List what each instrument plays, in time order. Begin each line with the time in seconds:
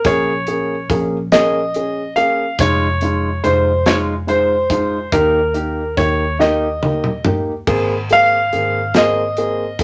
0.04 fingered electric bass A#1, upright piano A#3 C#4 G#4, grand piano C#5, kick, closed hi-hat
0.47 upright piano A#3 C#4 G#4, closed hi-hat
0.90 fingered electric bass A#1, upright piano A#3 C#4 G#4, kick, closed hi-hat
1.32 upright piano A#3 C#4 G#4, grand piano D#5, snare, closed hi-hat
1.74 upright piano C#4 G#4, closed hi-hat
2.16 upright piano A#3 C#4 G#4, grand piano F5, closed hi-hat
2.59 fingered electric bass F1, upright piano G#3 D#4 F4, grand piano C#5, kick, closed hi-hat
3.01 upright piano G#3 D#4 F4, closed hi-hat
3.44 fingered electric bass F1, upright piano G#3 D#4 F4, grand piano C5, closed hi-hat
3.86 upright piano G#3 D#4 F4, grand piano C#5, snare, closed hi-hat
4.27 upright piano G#3 D#4 F4, grand piano C5, closed hi-hat
4.70 upright piano G#3 D#4 F4, kick, closed hi-hat
5.12 fingered electric bass D#2, upright piano A#3 D#4 G4, grand piano A#4, kick, closed hi-hat
5.53 upright piano A#3 D#4 G4, closed hi-hat
5.97 fingered electric bass D#2, upright piano A#3 D#4 G4, grand piano C#5, kick, closed hi-hat
6.39 upright piano A#3 D#4 G4, grand piano D#5, snare
6.82 upright piano A#3 D#4 G4, high tom
7.04 mid tom
7.25 upright piano A#3 D#4 G4, mid tom
7.67 fingered electric bass G#1, upright piano A#3 C4 G#4, kick, crash
8.10 upright piano A#3 C4 G#4, grand piano F5, closed hi-hat
8.52 fingered electric bass G#1, upright piano A#3 C4 G#4, closed hi-hat
8.94 upright piano A#3 C4 G#4, grand piano D#5, snare, closed hi-hat
9.37 upright piano A#3 C4 G#4, closed hi-hat
9.79 upright piano A#3 C4 G#4, kick, closed hi-hat